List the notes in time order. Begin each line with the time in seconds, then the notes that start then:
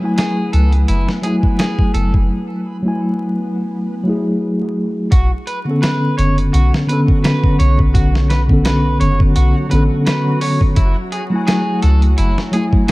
Already playing: B3 B4
0.00 F#3 A3 E4
0.05 G#5
0.18 G#4, snare, closed hi-hat
0.53 C#2 A4, closed hi-hat
0.72 closed hi-hat
0.88 F#1 E4, closed hi-hat
1.08 snare
1.22 F#3 A3 G#4, closed hi-hat
1.26 E4 G#5
1.43 kick
1.59 G#4, snare, closed hi-hat
1.79 kick
1.94 F#1 A4, closed hi-hat
2.14 kick
2.83 F#3 A3 E4
2.88 G#5
4.04 F#3 A3 E4
4.09 G#4
5.11 B1 F#3 F#4, kick, closed hi-hat
5.47 B4, closed hi-hat
5.65 D3 B3 C#4
5.71 A4
5.82 B4, snare, closed hi-hat
6.18 F#1 C#5, closed hi-hat
6.38 closed hi-hat
6.53 B1 F#4, closed hi-hat
6.74 snare
6.87 D3 B3 C#4 B4, closed hi-hat
6.93 A4
7.08 kick
7.24 B4, snare, closed hi-hat
7.44 kick
7.59 B1 C#5, closed hi-hat
7.79 kick
7.94 F#4, kick, closed hi-hat
8.15 snare
8.30 B4, snare, closed hi-hat
8.48 D3 B3 C#4, kick
8.53 A4
8.65 B4, snare, closed hi-hat
9.00 F#1 C#5, closed hi-hat
9.20 kick
9.36 B1 F#4, closed hi-hat
9.69 A1 D3 B3 C#4 B4, closed hi-hat
9.75 A4
10.06 B4, snare, closed hi-hat
10.41 C#5, open hi-hat
10.61 kick
10.76 F#1 E4, kick, closed hi-hat
11.12 G#4, closed hi-hat
11.30 F#3 A3 E4
11.36 G#5
11.47 G#4, snare, closed hi-hat
11.82 C#2 A4, closed hi-hat
12.02 closed hi-hat
12.18 F#1 E4, closed hi-hat
12.38 snare
12.51 F#3 A3 E4 G#4, closed hi-hat
12.57 G#5
12.73 kick
12.88 G#4, closed hi-hat